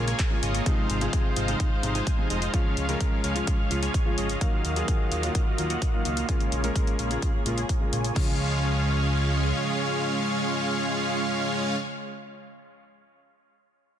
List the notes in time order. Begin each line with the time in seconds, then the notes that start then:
Already playing: A#1 A#3 C#4 G#4
0.07 A#3 F4 G#4 C#5 G#5, closed hi-hat
0.19 G#4 C#5 G#5, kick, clap, closed hi-hat
0.31 C#3 G#3 A#3 F4
0.43 G#1 A#3 F4 G#4 C#5 D#5, closed hi-hat
0.55 closed hi-hat
0.66 C3 F3 G#3 D#4 F4 C5 F5, kick, closed hi-hat
0.90 G#1, closed hi-hat
1.01 C3 F3 G#3 D#4 F4 G#4 C5 F5, closed hi-hat
1.13 G#3 D#4 F4 C5 F5, kick, closed hi-hat
1.36 G#1 G#3 D#4 F4 C5 F5, closed hi-hat
1.48 C3 F3 G#3 D#4, closed hi-hat
1.60 G#3 D#4 F4 C5 F5, kick, closed hi-hat
1.72 G#3 D#4 F4 C5 F5
1.83 G#1 C3 F3 G#3 D#4, closed hi-hat
1.95 G#3 D#4 F4 C5 G#5, closed hi-hat
2.07 F4, kick, closed hi-hat
2.18 C3 F3 G#3 D#4
2.30 F1 G#3 D#4 F4 C5 D#5, closed hi-hat
2.42 closed hi-hat
2.53 C#3 F3 G#3 C#4 F4 G#4 C#5, kick, closed hi-hat
2.77 C#2, closed hi-hat
2.88 C#3 F3 G#3 C#4 F4 A#4 C#5 F5, closed hi-hat
3.01 C#4 F4 C#5 F5, kick, closed hi-hat
3.24 C#2 G#3 C#4 F4 C#5 F5, closed hi-hat
3.35 C#3 F3 G#3 F4, closed hi-hat
3.47 G#3 C#4 F4 C#5 F5, kick, closed hi-hat
3.59 G#3 C#4 F4 C#5 F5
3.70 C#2 C#3 F3 G#3 F4, closed hi-hat
3.83 G#3 C#4 F4 C#5 G#5, closed hi-hat
3.94 G#3 C#4 F4 C#5 G#5, kick, closed hi-hat
4.05 C#3 F3 G#3 F4
4.18 G#1 G#3 C#4 F4 C#5 D#5, closed hi-hat
4.29 closed hi-hat
4.41 D#3 F#3 A#3 F4 F#4 F5, kick, closed hi-hat
4.65 D#2, closed hi-hat
4.76 D#3 F#3 A#3 F4 F#4 G#4 D#5 F5, closed hi-hat
4.88 A#3, kick, closed hi-hat
5.11 D#2 A#3 F4 F#4 D#5 F5, closed hi-hat
5.23 D#3 F#3 A#3 F4, closed hi-hat
5.35 A#3 F#4, kick, closed hi-hat
5.47 A#3 F4 F#4 D#5 F5
5.58 D#2 D#3 F#3 A#3 F4, closed hi-hat
5.70 A#3 F4 F#4 D#5 F#5, closed hi-hat
5.82 A#3 F#4 D#5, kick, closed hi-hat
5.93 D#3 F#3 A#3 F4
6.05 C#2 A#3 F4 F#4 D#5 F5, closed hi-hat
6.17 closed hi-hat
6.28 C#3 G#3 A#3 C#4 F4 G#4 C#5 F5, kick, closed hi-hat
6.40 closed hi-hat
6.52 A#1, closed hi-hat
6.63 C#3 G#3 A#3 F4 G#4 A#4 C#5 F5, closed hi-hat
6.75 A#3 F4 G#4 C#5 F5, kick, closed hi-hat
6.87 closed hi-hat
6.99 A#1 A#3 F4 G#4 C#5 F5, closed hi-hat
7.10 C#3 G#3 A#3 F4, closed hi-hat
7.22 A#3 F4 F5, kick, closed hi-hat
7.34 A#3 F4 G#4 C#5 F5
7.45 A#1 C#3 G#3 A#3 F4 G#4 C#5 F5, closed hi-hat
7.58 A#3 F4 G#4 C#5 G#5, closed hi-hat
7.69 A#3 F4, kick, closed hi-hat
7.80 C#3 G#3 A#3 F4
7.93 A#1 A#3 F4 G#4 C#5 G#5, closed hi-hat
8.04 closed hi-hat
8.14 C#2 C#3 F3 G#3 C#4 F4 G#4 C#5 F5, kick, crash